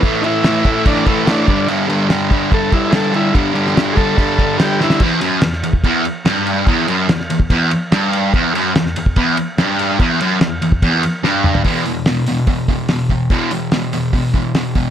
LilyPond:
<<
  \new Staff \with { instrumentName = "Transistor combo organ" } { \time 4/4 \key e \minor \tempo 4 = 145 r8 <dis' e'>4. d'8 a8 d'4 | r2 a'8 e'8 <gis' a'>8 e'8 | r4. <gis' a'>4. g'8 e'8 | r1 |
r1 | r1 | r1 | r1 |
r1 | }
  \new Staff \with { instrumentName = "Distorted electric guitar" } { \clef bass \time 4/4 \key e \minor <a, e a>8 <a, e a>8 <a, e a>8 <a, e a>8 <a, e a>8 <a, e a>8 <a, e a>8 <g, d g>8 | <g, d g>8 <g, d g>8 <g, d g>8 <g, d g>8 <g, d g>8 <g, d g>8 <g, d g>8 <g, d g>8 | <g, d g>8 <g, d g>8 <g, d g>8 <g, d g>8 <g, d g>8 <g, d g>8 <g, d g>8 <g, d g>8 | e,8 fis,8 e,8 e,8 e,8 r8 g,4 |
e,8 fis,8 e,8 e,8 e,8 r8 g,4 | e,8 fis,8 e,8 e,8 e,8 r8 g,4 | e,8 fis,8 e,8 e,8 e,8 r8 g,4 | <e, b, e>8 <e, b,>8 <e, b,>8 <e, b,>8 <e, b,>8 <e, b,>8 <e, b,>8 <e, b,>8 |
<e, b, e>8 <e, b,>8 <e, b,>8 <e, b,>8 <e, b,>8 <e, b,>8 <e, b,>8 <e, b,>8 | }
  \new DrumStaff \with { instrumentName = "Drums" } \drummode { \time 4/4 <cymc bd>8 cymc8 <cymc sn>8 <cymc bd>8 <cymc bd>8 <cymc bd>8 <cymc sn>8 <cymc bd>8 | cymc8 cymc8 <cymc sn>8 <cymc bd>8 <cymc bd>8 <cymc bd>8 <cymc sn>8 cymc8 | <cymc bd>8 cymc16 sn16 <cymc sn>8 <cymc bd>8 <cymc bd>8 <cymc bd>8 <cymc sn>8 sn16 sn16 | <cymc bd>8 cymr8 <cymr sn>16 sn16 cymr16 bd16 <bd cymr>8 cymr8 <cymr sn>8 cymr8 |
<bd cymr>8 cymr8 <cymr sn>16 sn16 cymr16 bd16 <bd cymr>8 cymr8 <cymr sn>8 cymr8 | <bd cymr>8 cymr8 <cymr sn>16 sn16 cymr16 bd16 <bd cymr>8 cymr8 <cymr sn>8 cymr8 | <bd cymr>8 cymr8 <cymr sn>8 cymr16 bd16 <bd cymr>8 cymr8 sn8 toml16 tomfh16 | <hho bd>8 hho8 <hho sn>8 hho8 <hho bd>8 <hho bd>8 <hho sn>8 <hho bd>8 |
<hho bd>8 hho8 <hho sn>8 hho8 <hho bd>8 <hho bd>8 <hho sn>8 <hho bd>8 | }
>>